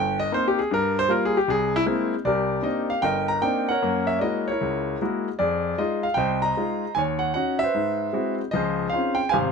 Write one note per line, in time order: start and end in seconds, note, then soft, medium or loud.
0.00 0.26 G1 medium
0.00 0.18 G5 medium
0.20 0.31 D#5 medium
0.32 0.58 A#3 medium
0.32 0.58 C4 medium
0.32 0.58 D#4 medium
0.32 0.45 C5 medium
0.48 0.58 G4 medium
0.59 0.70 G#4 medium
0.71 1.04 G2 medium
0.71 0.96 A#4 medium
0.99 1.10 C5 loud
1.08 1.35 G3 medium
1.08 1.35 A#3 medium
1.08 1.36 F4 medium
1.08 1.22 A#4 medium
1.25 1.36 G#4 medium
1.37 1.48 G4 medium
1.48 1.82 C2 medium
1.48 1.73 G#4 medium
1.76 1.83 E4 loud
1.86 2.13 G#3 medium
1.86 2.13 A#3 medium
1.86 2.13 C4 medium
1.86 2.13 E4 medium
2.25 2.59 C2 medium
2.25 3.01 G4 medium
2.25 3.00 A#4 medium
2.25 2.66 D5 medium
2.62 2.90 A#3 soft
2.62 2.90 C4 soft
2.62 2.90 D4 soft
2.62 2.90 D#4 medium
2.62 2.88 D#5 medium
2.90 3.04 F5 medium
3.02 3.37 G1 medium
3.02 3.69 A#4 medium
3.02 3.78 D#5 medium
3.02 3.29 G5 medium
3.28 3.41 A#5 medium
3.42 3.69 A#3 medium
3.42 3.69 C4 soft
3.42 3.69 D4 soft
3.42 3.70 D#4 medium
3.42 3.66 G5 medium
3.69 4.44 A#4 medium
3.69 4.44 C#5 medium
3.69 4.09 F#5 medium
3.82 4.16 F#2 medium
3.82 4.16 A#3 medium
4.07 4.18 E5 medium
4.19 4.48 G#3 medium
4.19 4.48 A#3 soft
4.19 4.48 E4 soft
4.19 4.48 F#4 medium
4.19 4.22 D5 medium
4.19 4.45 D#5 medium
4.48 5.00 E4 medium
4.48 5.23 A#4 soft
4.48 4.96 C#5 medium
4.61 4.95 C#2 medium
5.02 5.27 G#3 medium
5.02 5.27 A#3 soft
5.02 5.27 E4 soft
5.02 5.28 F#4 medium
5.39 5.73 F2 medium
5.39 6.14 G#4 medium
5.39 5.79 D5 medium
5.78 6.05 G#3 medium
5.78 6.05 D#4 soft
5.78 6.05 F4 medium
5.78 6.04 D#5 medium
6.03 6.16 F5 medium
6.14 6.51 C2 medium
6.14 6.92 C5 medium
6.14 6.43 D#5 medium
6.14 6.39 G5 medium
6.42 6.93 D#5 medium
6.42 6.91 A#5 medium
6.57 6.83 G#3 medium
6.57 6.84 D#4 soft
6.57 6.84 F4 medium
6.95 7.30 D#2 medium
6.95 7.71 C#5 medium
6.95 7.00 G#5 medium
7.19 7.32 F#5 medium
7.34 7.62 C#4 soft
7.34 7.62 D#4 soft
7.34 7.62 F#4 medium
7.34 7.60 F#5 medium
7.59 8.34 E5 medium
7.63 8.36 B4 medium
7.63 8.36 C5 medium
7.74 8.08 G#2 medium
8.13 8.40 G#3 medium
8.13 8.40 C4 soft
8.13 8.40 E4 soft
8.13 8.40 F#4 medium
8.51 8.87 C#2 medium
8.51 8.87 F3 medium
8.51 9.28 G#4 medium
8.51 8.88 D#5 medium
8.56 9.29 C5 medium
8.89 9.19 C4 soft
8.89 9.19 C#4 soft
8.89 9.19 D#4 soft
8.89 9.17 F5 medium
8.94 9.19 F4 medium
9.15 9.29 G5 medium
9.29 9.52 G#1 medium
9.29 9.52 C5 medium
9.29 9.52 F5 medium
9.29 9.35 G#5 medium
9.34 9.52 C3 medium